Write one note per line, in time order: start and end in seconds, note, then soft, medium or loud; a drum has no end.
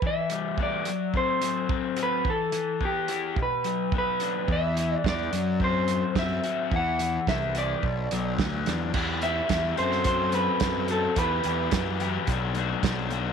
0.02 0.87 E3 medium
0.02 kick medium
0.07 0.62 E5 medium
0.30 0.87 G3 medium
0.30 closed hi-hat medium
0.58 0.87 B3 medium
0.58 kick medium
0.63 1.17 D5 medium
0.85 1.40 F#3 medium
0.85 closed hi-hat medium
1.14 1.68 C4 medium
1.14 2.02 C5 medium
1.14 kick medium
1.41 2.24 F#3 medium
1.41 closed hi-hat medium
1.69 2.26 C4 medium
1.69 kick loud
1.96 2.26 F#4 medium
1.96 closed hi-hat medium
2.03 2.30 B4 medium
2.25 2.51 E3 medium
2.25 kick medium
2.30 2.85 A4 medium
2.52 3.37 E3 medium
2.52 closed hi-hat medium
2.81 3.37 B3 medium
2.81 kick medium
2.85 3.41 G4 medium
3.08 3.38 E4 medium
3.08 closed hi-hat medium
3.36 4.48 B2 medium
3.36 kick medium
3.42 3.97 B4 medium
3.64 4.47 F#3 medium
3.64 closed hi-hat medium
3.92 4.50 B3 medium
3.92 kick loud
3.98 4.52 B4 medium
4.20 4.49 D4 medium
4.20 closed hi-hat medium
4.48 4.95 E2 medium
4.48 4.75 E3 medium
4.48 kick medium
4.52 4.96 E5 medium
4.76 5.32 E3 medium
4.76 closed hi-hat medium
4.96 5.08 D5 medium
5.04 5.28 E2 medium
5.04 5.33 B3 medium
5.04 kick medium
5.04 snare medium
5.09 5.64 D5 medium
5.32 6.01 F#2 medium
5.32 5.88 F#3 medium
5.32 closed hi-hat medium
5.60 6.15 C4 medium
5.60 kick medium
5.64 6.19 C5 medium
5.88 6.72 F#3 medium
5.88 closed hi-hat medium
6.15 6.39 F#2 medium
6.15 6.72 C4 medium
6.15 6.70 E5 medium
6.15 kick loud
6.15 snare loud
6.44 6.72 F#4 medium
6.44 closed hi-hat medium
6.71 7.17 E2 medium
6.71 6.98 E3 medium
6.71 kick medium
6.76 7.29 F#5 medium
6.99 7.83 E3 medium
6.99 closed hi-hat medium
7.27 7.73 C2 medium
7.27 7.83 B3 medium
7.27 7.57 E5 medium
7.27 kick medium
7.27 snare medium
7.55 7.84 E4 medium
7.55 8.64 D5 medium
7.55 closed hi-hat medium
7.83 8.06 B1 medium
7.83 8.95 B2 medium
7.83 kick medium
8.11 8.36 B1 medium
8.11 8.94 F#3 medium
8.11 closed hi-hat medium
8.38 8.63 D2 medium
8.38 8.94 B3 medium
8.38 kick loud
8.38 snare loud
8.66 8.92 E2 medium
8.66 8.95 D4 medium
8.66 snare medium
8.66 closed hi-hat medium
8.94 9.40 E2 medium
8.94 9.21 E3 medium
8.94 9.22 B3 medium
8.94 9.23 E4 medium
8.94 9.23 G4 medium
8.94 kick loud
8.94 crash medium
9.22 9.48 E3 medium
9.22 9.49 B3 medium
9.22 9.50 E4 medium
9.22 9.50 G4 medium
9.22 9.78 E5 medium
9.22 closed hi-hat medium
9.49 9.72 E2 medium
9.49 9.76 E3 medium
9.49 9.76 B3 medium
9.49 9.76 E4 medium
9.49 9.77 G4 medium
9.49 kick medium
9.49 snare medium
9.49 closed hi-hat medium
9.76 10.47 F#2 medium
9.76 10.04 F#3 medium
9.76 10.04 C4 medium
9.76 10.05 F#4 medium
9.76 10.06 A4 medium
9.76 10.06 C5 medium
9.76 closed hi-hat medium
9.92 snare soft
10.04 10.31 F#3 medium
10.04 10.32 C4 medium
10.04 10.33 F#4 medium
10.04 10.33 A4 medium
10.04 10.34 C5 medium
10.04 kick medium
10.04 closed hi-hat medium
10.32 10.60 F#3 medium
10.32 10.61 C4 medium
10.32 10.61 F#4 medium
10.32 10.62 A4 medium
10.32 10.91 B4 medium
10.32 closed hi-hat medium
10.60 11.06 F#2 medium
10.60 10.87 F#3 medium
10.60 10.88 C4 loud
10.60 10.89 F#4 loud
10.60 10.89 A4 medium
10.60 kick loud
10.60 snare loud
10.60 closed hi-hat medium
10.88 11.14 F#3 medium
10.88 11.15 C4 medium
10.88 11.15 F#4 medium
10.88 11.15 A4 medium
10.88 11.16 A4 medium
10.88 closed hi-hat medium
11.16 11.39 E2 medium
11.16 11.43 E3 medium
11.16 11.44 B3 medium
11.16 11.44 E4 medium
11.16 11.44 G4 loud
11.16 13.07 B4 medium
11.16 kick loud
11.16 closed hi-hat medium
11.44 11.67 E2 medium
11.44 11.71 E3 medium
11.44 11.71 B3 medium
11.44 11.72 E4 medium
11.44 11.72 G4 medium
11.44 closed hi-hat medium
11.71 12.17 F#2 medium
11.71 11.99 E3 medium
11.71 11.99 B3 medium
11.71 12.00 E4 medium
11.71 12.00 G4 medium
11.71 kick medium
11.71 snare medium
11.71 closed hi-hat medium
12.00 12.26 E3 medium
12.00 12.26 B3 medium
12.00 12.26 E4 medium
12.00 12.26 G4 medium
12.00 closed hi-hat medium
12.27 12.73 B1 medium
12.27 12.55 B2 medium
12.27 12.55 F#3 medium
12.27 12.55 B3 medium
12.27 12.56 D4 medium
12.27 12.57 F#4 medium
12.27 kick loud
12.27 closed hi-hat medium
12.55 12.83 B2 medium
12.55 12.83 F#3 medium
12.55 12.84 B3 medium
12.55 12.84 D4 medium
12.55 12.85 F#4 medium
12.55 closed hi-hat medium
12.83 13.29 B1 medium
12.83 13.10 B2 medium
12.83 13.11 F#3 medium
12.83 13.11 B3 medium
12.83 13.12 D4 loud
12.83 13.12 F#4 loud
12.83 kick loud
12.83 snare loud
12.83 closed hi-hat medium
13.11 13.33 B2 medium
13.11 13.33 F#3 medium
13.11 13.33 B3 medium
13.11 13.33 D4 medium
13.11 13.33 F#4 medium
13.11 closed hi-hat medium